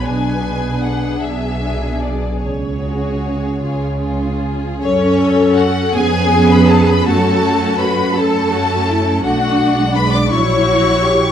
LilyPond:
<<
  \new Staff \with { instrumentName = "Violin section" } { \time 6/8 \key fis \minor \tempo 4. = 53 gis''4 fis''8 e''4 d''8 | cis''2~ cis''8 r8 | cis''4 fis''8 gis''8. b''16 a''16 b''16 | a''4 b''8 a''4. |
fis''4 b''16 d'''16 cis'''4. | }
  \new Staff \with { instrumentName = "Violin section" } { \time 6/8 \key fis \minor <d' gis'>8 <d' gis'>4. <d' gis'>4 | r8 <fis' gis'>4 <eis' gis'>8 <eis' gis'>4 | cis'4 fis'8 gis'8. b'16 a'16 b'16 | a'4 b'8 a'4. |
fis'4 b'16 d''16 cis''4. | }
  \new Staff \with { instrumentName = "Cello section" } { \time 6/8 \key fis \minor b,4. b,4. | cis4. cis4. | r4. gis'4. | fis'4. a'8 fis'8 e'8 |
d'4. e'8 fis'8 g'8 | }
  \new Staff \with { instrumentName = "Viola section" } { \time 6/8 \key fis \minor << { b'4. gis'4. | gis'2~ gis'16 r8. | a'4. cis'4. | cis'4. cis'4. |
d'4. e'4. | } \\ { r2. | r2. | cis'4. b4. | a4. a4. |
a8. gis8. fis4. | } >> }
  \new Staff \with { instrumentName = "Double bass section" } { \clef bass \time 6/8 \key fis \minor b,,4. b,,4. | cis,4. cis,4. | fis,4. eis,4. | fis,2. |
b,,4. ais,,4. | }
>>